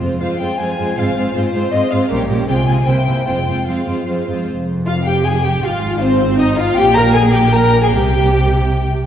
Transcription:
0.01 0.10 F2 soft
0.01 0.19 G#3 soft
0.01 0.20 C4 soft
0.01 0.19 F4 soft
0.01 0.19 C5 soft
0.20 0.29 F2 soft
0.20 0.39 G#3 soft
0.20 0.39 C4 soft
0.20 0.39 F4 soft
0.20 0.39 C5 soft
0.20 0.38 F5 medium
0.40 0.48 F2 soft
0.40 0.58 G#3 soft
0.40 0.58 C4 soft
0.40 0.58 F4 soft
0.40 0.58 C5 soft
0.40 0.59 G5 medium
0.59 0.67 F2 soft
0.59 0.77 G#3 soft
0.59 0.77 C4 soft
0.59 0.77 F4 soft
0.59 0.78 C5 soft
0.59 0.98 G#5 medium
0.78 0.86 F2 soft
0.78 0.96 G#3 soft
0.78 0.96 C4 soft
0.78 0.97 F4 soft
0.78 0.96 C5 soft
0.97 1.15 G#1 soft
0.97 1.06 G#2 soft
0.97 1.15 G#3 soft
0.97 1.15 C4 soft
0.97 1.15 F4 soft
0.97 1.15 C5 soft
0.97 1.36 F5 medium
1.16 1.24 G#2 soft
1.16 1.34 G#3 soft
1.16 1.34 C4 soft
1.16 1.33 F4 soft
1.16 1.33 C5 soft
1.34 1.43 G#2 soft
1.34 1.53 G#3 soft
1.34 1.53 C4 soft
1.34 1.53 F4 soft
1.34 1.53 C5 soft
1.34 1.73 C5 medium
1.54 1.62 G#2 soft
1.54 1.71 G#3 soft
1.54 1.71 C4 soft
1.54 1.71 F4 soft
1.54 1.71 C5 soft
1.72 1.81 G#2 soft
1.72 1.91 G#3 soft
1.72 1.91 C4 soft
1.72 1.90 F4 soft
1.72 1.90 C5 soft
1.72 1.92 D#5 medium
1.91 2.00 G#2 soft
1.91 2.11 G#3 soft
1.91 2.11 C4 soft
1.91 2.10 F4 soft
1.91 2.10 C5 soft
1.91 2.11 F5 medium
2.10 2.29 A#1 medium
2.10 2.19 A#2 medium
2.10 2.29 G3 soft
2.10 2.28 C#4 soft
2.10 2.28 G4 soft
2.10 2.28 A#4 soft
2.29 2.37 A#2 medium
2.29 2.49 G3 soft
2.29 2.49 C#4 soft
2.29 2.48 G4 soft
2.29 2.48 A#4 soft
2.48 2.67 C2 soft
2.48 2.57 C3 soft
2.48 2.67 G#3 soft
2.48 2.67 C4 soft
2.48 2.66 F4 soft
2.48 2.66 G#4 soft
2.48 2.67 G5 medium
2.67 2.76 C3 soft
2.67 2.87 G#3 soft
2.67 2.86 C4 soft
2.67 2.87 F4 soft
2.67 2.87 G#4 soft
2.67 2.87 G#5 medium
2.87 3.06 C2 soft
2.87 2.96 C3 soft
2.87 3.06 A#3 soft
2.87 3.05 C4 soft
2.87 3.06 E4 soft
2.87 3.06 C5 soft
2.87 3.26 G5 medium
3.07 3.16 C3 soft
3.07 3.27 A#3 soft
3.07 3.26 C4 soft
3.07 3.27 E4 soft
3.07 3.26 C5 soft
3.27 3.46 F1 soft
3.27 3.36 F2 soft
3.27 3.47 G#3 soft
3.27 3.47 C4 soft
3.27 3.46 F4 soft
3.27 3.46 C5 soft
3.27 3.67 G5 medium
3.47 3.56 F2 soft
3.47 3.66 G#3 soft
3.47 3.66 C4 soft
3.47 3.66 F4 soft
3.47 3.66 C5 soft
3.67 3.75 F2 soft
3.67 3.87 G#3 soft
3.67 3.87 C4 soft
3.67 3.86 F4 soft
3.67 3.86 C5 soft
3.67 4.28 F5 soft
3.87 3.96 F2 soft
3.87 4.07 G#3 soft
3.87 4.07 C4 soft
3.87 4.07 F4 soft
3.87 4.06 C5 soft
4.07 4.16 F2 soft
4.07 4.27 G#3 soft
4.07 4.27 C4 soft
4.07 4.27 F4 soft
4.07 4.26 C5 soft
4.28 4.36 F2 soft
4.28 4.48 G#3 soft
4.28 4.48 C4 soft
4.28 4.47 F4 soft
4.28 4.47 C5 soft
4.48 5.59 F1 soft
4.48 5.59 F2 soft
4.86 4.94 F4 medium
4.86 5.04 F5 medium
5.05 5.25 G4 medium
5.05 5.25 G5 medium
5.25 5.44 G#4 medium
5.25 5.44 G#5 medium
5.44 5.63 G4 medium
5.44 5.64 G4 medium
5.44 5.63 G5 medium
5.63 6.77 G#1 medium
5.63 6.77 G#2 medium
5.63 6.01 F4 medium
5.63 6.02 F4 medium
5.63 6.01 F5 medium
6.01 6.38 C4 medium
6.01 6.40 C4 medium
6.01 6.38 C5 medium
6.39 6.58 D#4 medium
6.39 6.46 D#5 medium
6.58 6.77 F4 medium
6.58 6.77 F5 medium
6.77 7.91 A#1 medium
6.77 7.91 A#2 medium
6.77 6.96 G4 medium
6.77 6.97 G4 medium
6.77 6.96 G5 loud
6.96 7.15 A#4 medium
6.96 7.15 A#5 loud
7.14 7.34 G#4 medium
7.14 7.33 G#5 medium
7.34 7.53 G4 medium
7.34 7.54 G4 medium
7.34 7.53 G5 medium
7.53 7.82 A#4 medium
7.53 7.83 A#4 medium
7.53 7.83 A#5 medium
7.83 7.93 G#4 medium
7.83 7.93 G#5 medium
7.92 8.92 C2 medium
7.92 8.92 C3 medium
7.92 8.90 G4 medium
7.92 8.92 G4 medium
7.92 8.90 G5 medium

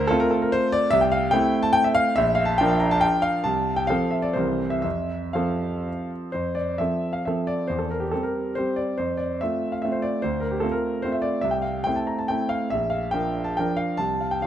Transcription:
0.00 0.11 D2 medium
0.00 0.11 A#4 loud
0.00 0.12 C5 loud
0.07 0.88 A3 medium
0.07 0.88 C4 medium
0.07 0.88 F4 medium
0.07 0.20 A4 loud
0.20 0.31 A#4 loud
0.31 0.42 A4 medium
0.42 0.53 A#4 medium
0.52 0.72 C5 loud
0.72 0.92 D5 loud
0.91 1.32 C2 medium
0.91 1.01 E5 loud
1.01 1.11 G5 medium
1.12 1.33 F5 loud
1.31 2.12 A3 medium
1.31 2.13 C4 medium
1.31 2.13 E4 medium
1.31 1.64 G5 loud
1.63 1.74 A5 loud
1.73 1.84 G5 loud
1.84 1.95 E5 medium
1.95 2.16 F5 loud
2.16 2.59 A#1 medium
2.16 2.37 E5 loud
2.35 2.47 F5 loud
2.45 2.58 A5 medium
2.58 3.43 F3 medium
2.58 3.43 D4 medium
2.58 3.43 A#4 medium
2.58 2.70 G5 loud
2.68 2.81 A5 medium
2.80 2.92 A#5 medium
2.91 3.03 A5 loud
3.01 3.24 G5 loud
3.22 3.45 F5 loud
3.44 3.88 C2 medium
3.44 3.77 A5 loud
3.76 3.89 G5 medium
3.87 4.33 F3 medium
3.87 4.33 C4 medium
3.87 4.33 A4 medium
3.87 4.12 F5 loud
4.11 4.24 E5 medium
4.22 4.36 D5 medium
4.33 4.83 C2 medium
4.33 4.81 E3 soft
4.33 4.81 C4 soft
4.33 4.81 A#4 soft
4.33 4.71 C5 medium
4.70 4.81 E5 medium
4.82 5.34 F2 medium
4.82 5.35 E5 medium
5.33 6.29 F3 medium
5.33 6.30 C4 soft
5.33 6.30 A4 medium
5.33 6.10 F5 medium
6.32 6.78 F2 medium
6.32 6.55 C5 medium
6.55 6.78 D5 medium
6.78 7.21 F3 soft
6.78 7.22 C4 soft
6.78 7.22 A4 soft
6.78 7.13 E5 medium
7.13 7.24 F5 medium
7.25 7.66 F3 soft
7.25 7.66 C4 soft
7.25 7.66 A4 medium
7.25 7.47 E5 medium
7.47 7.69 D5 medium
7.67 8.12 E2 medium
7.67 7.79 C5 medium
7.79 7.90 A4 medium
7.91 8.01 A#4 medium
8.00 8.12 G4 medium
8.11 8.52 G3 soft
8.11 8.53 C4 soft
8.11 8.53 G4 soft
8.11 8.23 A4 medium
8.23 8.56 A#4 medium
8.55 8.94 G3 soft
8.55 8.94 C4 soft
8.55 8.94 G4 soft
8.55 8.76 C5 medium
8.76 8.97 D5 medium
8.98 9.40 F2 medium
8.98 9.18 C5 medium
9.17 9.40 D5 medium
9.41 9.81 A3 soft
9.41 9.81 C4 soft
9.41 9.81 F4 soft
9.41 9.74 E5 medium
9.72 9.83 F5 medium
9.82 10.20 A3 soft
9.82 10.21 C4 soft
9.82 10.21 F4 soft
9.82 9.93 E5 medium
9.92 10.03 C5 medium
10.02 10.23 D5 medium
10.22 10.63 D2 medium
10.22 10.43 C5 medium
10.40 10.52 A#4 medium
10.51 10.63 G4 medium
10.60 11.01 A3 soft
10.60 11.01 C4 soft
10.60 11.01 F4 soft
10.60 10.73 A4 medium
10.71 11.04 A#4 medium
11.02 11.40 A3 soft
11.02 11.40 C4 soft
11.02 11.41 F4 soft
11.02 11.14 C5 medium
11.12 11.24 E5 medium
11.22 11.43 D5 medium
11.41 11.85 C2 medium
11.41 11.53 E5 medium
11.51 11.63 G5 medium
11.62 11.85 F5 medium
11.84 12.26 A3 soft
11.84 12.26 C4 soft
11.84 12.26 E4 soft
11.84 11.96 G5 medium
11.96 12.08 A5 medium
12.07 12.19 A#5 medium
12.19 12.30 A5 medium
12.28 12.67 A3 soft
12.28 12.67 C4 soft
12.28 12.68 E4 soft
12.28 12.50 G5 medium
12.49 12.70 F5 medium
12.70 13.13 A#1 medium
12.70 12.91 E5 medium
12.90 13.12 F5 medium
13.11 13.53 F3 soft
13.11 13.53 D4 soft
13.11 13.53 A#4 medium
13.11 13.45 G5 medium
13.44 13.56 A5 medium
13.57 13.96 F3 soft
13.57 13.96 D4 soft
13.57 13.96 A#4 medium
13.57 13.78 G5 medium
13.77 13.98 F5 medium
13.97 14.42 C2 medium
13.97 14.20 A5 medium
14.21 14.32 F5 medium
14.31 14.43 G5 medium
14.42 14.47 F5 medium

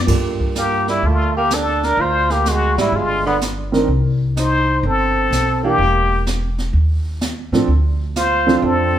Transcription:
0.07 0.99 G2 medium
0.07 1.41 G3 medium
0.07 1.41 A#3 soft
0.07 1.41 F4 soft
0.07 1.41 A4 medium
0.07 brush sweep soft
0.07 kick medium
0.07 snare soft
0.07 crash medium
0.40 kick soft
0.55 0.86 A#3 medium
0.55 0.87 G4 medium
0.55 snare medium
0.55 hi-hat pedal soft
0.88 1.07 G3 medium
0.88 1.08 E4 medium
0.88 snare soft
1.02 1.94 D2 medium
1.02 1.36 A3 medium
1.02 brush sweep soft
1.07 1.36 F4 medium
1.37 1.55 A#3 medium
1.37 1.56 G4 medium
1.50 1.84 D4 medium
1.50 1.86 A4 medium
1.50 snare medium
1.50 hi-hat pedal medium
1.83 2.01 D4 medium
1.83 2.03 A#4 medium
1.83 snare soft
1.97 2.73 D2 medium
1.97 2.32 F4 medium
1.97 brush sweep soft
2.01 2.34 C5 medium
2.30 2.49 A#3 medium
2.30 2.50 G4 medium
2.30 snare soft
2.45 2.77 G#3 medium
2.45 2.79 F#4 medium
2.45 snare medium
2.45 hi-hat pedal soft
2.77 2.92 G#1 medium
2.77 2.95 G3 medium
2.77 2.97 E4 medium
2.77 snare soft
2.92 3.84 G1 medium
2.92 3.25 G#3 medium
2.92 3.27 F4 medium
2.92 brush sweep soft
3.26 3.40 D3 medium
3.26 3.36 B3 medium
3.41 snare medium
3.41 hi-hat pedal medium
3.72 3.86 D#3 medium
3.72 3.86 C4 medium
3.72 3.87 D4 medium
3.72 3.87 A#4 medium
3.72 snare soft
3.88 4.79 C2 medium
3.88 brush sweep soft
4.37 4.87 D#4 medium
4.37 4.88 C5 medium
4.37 snare soft
4.37 hi-hat pedal medium
4.83 5.28 G1 medium
4.83 5.63 C4 medium
4.83 5.65 A4 medium
4.83 brush sweep soft
5.31 5.75 B1 medium
5.31 snare medium
5.31 hi-hat pedal medium
5.63 5.77 E3 medium
5.63 5.77 A#3 medium
5.63 6.22 A#3 medium
5.63 5.78 D4 medium
5.63 5.78 G4 medium
5.63 6.23 G4 medium
5.78 6.70 E1 medium
5.78 brush sweep soft
6.27 snare medium
6.27 hi-hat pedal soft
6.58 snare soft
6.73 7.49 D#2 medium
6.73 brush sweep soft
7.21 snare medium
7.21 hi-hat pedal soft
7.52 7.67 A2 medium
7.52 7.67 F3 medium
7.52 7.67 C4 medium
7.52 7.67 D4 medium
7.52 7.68 A4 medium
7.52 snare soft
7.68 8.59 D2 medium
7.68 brush sweep soft
8.16 8.65 F4 medium
8.16 8.66 C5 medium
8.16 snare medium
8.16 hi-hat pedal medium
8.47 8.99 F3 medium
8.47 8.99 C4 medium
8.47 8.99 D4 medium
8.47 8.99 A4 medium
8.47 snare soft
8.62 8.99 F2 medium
8.62 8.99 C4 medium
8.62 8.99 A4 medium
8.62 brush sweep soft

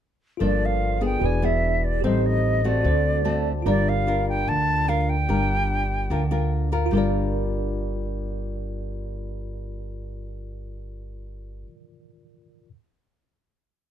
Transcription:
0.37 1.18 G1 medium
0.37 1.20 G2 soft
0.37 0.98 F3 soft
0.37 0.98 A#3 soft
0.37 0.99 D4 medium
0.37 1.19 F4 soft
0.37 1.20 A4 soft
0.41 1.21 A#4 soft
0.41 1.22 D5 soft
0.41 0.67 D5 medium
0.65 1.04 F5 medium
1.01 1.39 B3 soft
1.01 1.39 D4 soft
1.01 1.39 G#4 soft
1.05 1.27 G5 medium
1.20 1.99 E1 medium
1.20 2.01 E3 soft
1.20 2.01 F#4 soft
1.20 2.02 G#4 soft
1.24 2.03 B4 soft
1.24 2.04 D5 soft
1.24 1.46 G#5 medium
1.42 2.00 B3 medium
1.42 2.01 D4 medium
1.42 2.01 G#4 medium
1.42 1.85 E5 medium
1.84 2.04 D5 medium
2.01 2.81 A1 medium
2.01 2.83 A2 soft
2.01 2.61 G3 soft
2.01 2.61 C4 medium
2.01 2.62 D#4 medium
2.01 2.82 G4 soft
2.01 2.83 A4 soft
2.01 2.84 C5 soft
2.05 2.27 C5 medium
2.05 2.85 D#5 soft
2.26 2.68 D#5 medium
2.64 3.22 A3 medium
2.64 3.22 C4 medium
2.64 3.23 F#4 medium
2.64 3.47 D5 medium
2.81 3.62 D2 medium
2.81 3.64 D3 soft
2.81 3.63 F#4 soft
2.81 3.64 A4 soft
2.86 3.65 C5 soft
2.86 3.66 D5 medium
3.25 3.51 A3 soft
3.25 3.51 C4 medium
3.25 3.52 F#4 medium
3.25 3.63 A5 soft
3.62 4.43 G1 medium
3.62 4.45 G3 soft
3.62 3.92 D4 medium
3.62 6.85 F4 soft
3.62 6.87 A#4 soft
3.66 3.92 F4 soft
3.66 3.92 A#4 medium
3.66 3.90 D5 medium
3.66 6.88 D5 medium
3.88 4.28 F5 medium
4.07 4.85 D4 medium
4.07 4.85 F4 medium
4.07 4.86 A#4 medium
4.28 4.50 G5 medium
4.48 5.25 D2 medium
4.48 5.27 D3 soft
4.48 4.90 A5 medium
4.88 5.14 D4 soft
4.88 5.14 F4 soft
4.88 5.15 A#4 medium
4.88 5.10 F5 medium
5.09 6.51 G5 medium
5.28 6.06 G1 medium
5.28 6.08 G3 soft
5.28 5.83 D4 soft
5.28 5.83 F4 medium
5.28 5.84 A#4 medium
6.10 6.87 D2 medium
6.10 6.90 D3 soft
6.10 6.22 D4 soft
6.10 6.23 F4 soft
6.10 6.23 A#4 soft
6.31 6.68 D4 medium
6.31 6.68 F4 medium
6.31 6.69 A#4 medium
6.72 6.92 D4 soft
6.72 6.94 F4 medium
6.72 6.96 A#4 medium
6.86 11.60 F4 medium
6.91 11.63 G1 medium
6.91 11.67 G3 medium
6.91 11.68 D4 medium
6.91 11.64 A#4 soft
6.95 11.69 F4 medium
6.95 11.70 A#4 medium
6.95 11.66 D5 medium

